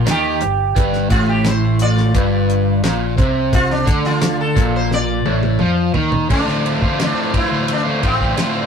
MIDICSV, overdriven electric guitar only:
0, 0, Header, 1, 2, 480
1, 0, Start_track
1, 0, Tempo, 692042
1, 528, Time_signature, 4, 2, 24, 8
1, 6007, End_track
2, 0, Start_track
2, 0, Title_t, "Overdriven electric guitar"
2, 0, Program_c, 0, 29
2, 43, Note_on_c, 0, 51, 103
2, 278, Note_off_c, 0, 51, 0
2, 290, Note_on_c, 0, 43, 73
2, 481, Note_off_c, 0, 43, 0
2, 525, Note_on_c, 0, 43, 106
2, 757, Note_off_c, 0, 43, 0
2, 760, Note_on_c, 0, 45, 97
2, 1475, Note_off_c, 0, 45, 0
2, 1488, Note_on_c, 0, 43, 109
2, 1960, Note_off_c, 0, 43, 0
2, 1966, Note_on_c, 0, 46, 108
2, 2196, Note_off_c, 0, 46, 0
2, 2199, Note_on_c, 0, 48, 99
2, 2675, Note_off_c, 0, 48, 0
2, 2676, Note_on_c, 0, 50, 96
2, 3154, Note_off_c, 0, 50, 0
2, 3156, Note_on_c, 0, 46, 97
2, 3634, Note_off_c, 0, 46, 0
2, 3644, Note_on_c, 0, 45, 100
2, 3878, Note_off_c, 0, 45, 0
2, 3884, Note_on_c, 0, 53, 93
2, 4118, Note_off_c, 0, 53, 0
2, 4124, Note_on_c, 0, 51, 107
2, 4358, Note_off_c, 0, 51, 0
2, 4367, Note_on_c, 0, 38, 81
2, 4369, Note_on_c, 0, 45, 77
2, 4373, Note_on_c, 0, 50, 85
2, 4377, Note_on_c, 0, 57, 79
2, 4377, Note_on_c, 0, 60, 82
2, 4380, Note_on_c, 0, 65, 90
2, 4484, Note_off_c, 0, 65, 0
2, 4487, Note_on_c, 0, 65, 67
2, 4490, Note_off_c, 0, 60, 0
2, 4493, Note_on_c, 0, 60, 64
2, 4496, Note_off_c, 0, 57, 0
2, 4498, Note_off_c, 0, 50, 0
2, 4499, Note_on_c, 0, 57, 59
2, 4500, Note_on_c, 0, 50, 54
2, 4726, Note_off_c, 0, 65, 0
2, 4728, Note_off_c, 0, 45, 0
2, 4729, Note_on_c, 0, 65, 64
2, 4733, Note_off_c, 0, 60, 0
2, 4736, Note_on_c, 0, 60, 66
2, 4741, Note_off_c, 0, 57, 0
2, 4743, Note_on_c, 0, 57, 57
2, 4747, Note_off_c, 0, 50, 0
2, 4750, Note_on_c, 0, 50, 53
2, 4757, Note_off_c, 0, 38, 0
2, 4851, Note_on_c, 0, 38, 81
2, 4858, Note_off_c, 0, 50, 0
2, 4858, Note_on_c, 0, 45, 87
2, 4861, Note_off_c, 0, 57, 0
2, 4861, Note_on_c, 0, 50, 85
2, 4862, Note_off_c, 0, 60, 0
2, 4864, Note_on_c, 0, 57, 89
2, 4865, Note_off_c, 0, 65, 0
2, 4865, Note_on_c, 0, 60, 89
2, 4867, Note_on_c, 0, 65, 88
2, 5086, Note_off_c, 0, 50, 0
2, 5087, Note_off_c, 0, 57, 0
2, 5088, Note_on_c, 0, 50, 66
2, 5090, Note_on_c, 0, 57, 73
2, 5094, Note_off_c, 0, 60, 0
2, 5097, Note_off_c, 0, 65, 0
2, 5097, Note_on_c, 0, 60, 68
2, 5100, Note_on_c, 0, 65, 76
2, 5195, Note_off_c, 0, 65, 0
2, 5198, Note_on_c, 0, 65, 67
2, 5202, Note_off_c, 0, 60, 0
2, 5204, Note_on_c, 0, 60, 57
2, 5209, Note_off_c, 0, 57, 0
2, 5210, Note_off_c, 0, 50, 0
2, 5212, Note_on_c, 0, 57, 63
2, 5213, Note_on_c, 0, 50, 60
2, 5333, Note_off_c, 0, 45, 0
2, 5432, Note_off_c, 0, 65, 0
2, 5435, Note_on_c, 0, 65, 64
2, 5440, Note_off_c, 0, 60, 0
2, 5443, Note_on_c, 0, 60, 52
2, 5446, Note_off_c, 0, 50, 0
2, 5446, Note_off_c, 0, 57, 0
2, 5449, Note_on_c, 0, 50, 51
2, 5449, Note_on_c, 0, 57, 57
2, 5464, Note_off_c, 0, 38, 0
2, 5561, Note_off_c, 0, 50, 0
2, 5563, Note_on_c, 0, 50, 65
2, 5566, Note_off_c, 0, 57, 0
2, 5568, Note_on_c, 0, 57, 64
2, 5571, Note_off_c, 0, 60, 0
2, 5574, Note_on_c, 0, 60, 77
2, 5577, Note_off_c, 0, 65, 0
2, 5580, Note_on_c, 0, 65, 73
2, 5688, Note_off_c, 0, 65, 0
2, 5689, Note_off_c, 0, 60, 0
2, 5691, Note_on_c, 0, 65, 72
2, 5692, Note_on_c, 0, 60, 67
2, 5693, Note_off_c, 0, 57, 0
2, 5696, Note_on_c, 0, 57, 64
2, 5702, Note_off_c, 0, 50, 0
2, 5705, Note_on_c, 0, 50, 62
2, 5800, Note_on_c, 0, 38, 89
2, 5802, Note_on_c, 0, 45, 74
2, 5803, Note_off_c, 0, 50, 0
2, 5804, Note_off_c, 0, 57, 0
2, 5806, Note_on_c, 0, 50, 80
2, 5807, Note_on_c, 0, 57, 85
2, 5810, Note_off_c, 0, 65, 0
2, 5811, Note_off_c, 0, 60, 0
2, 5813, Note_on_c, 0, 65, 85
2, 5814, Note_on_c, 0, 60, 83
2, 6007, Note_off_c, 0, 38, 0
2, 6007, Note_off_c, 0, 45, 0
2, 6007, Note_off_c, 0, 50, 0
2, 6007, Note_off_c, 0, 57, 0
2, 6007, Note_off_c, 0, 60, 0
2, 6007, Note_off_c, 0, 65, 0
2, 6007, End_track
0, 0, End_of_file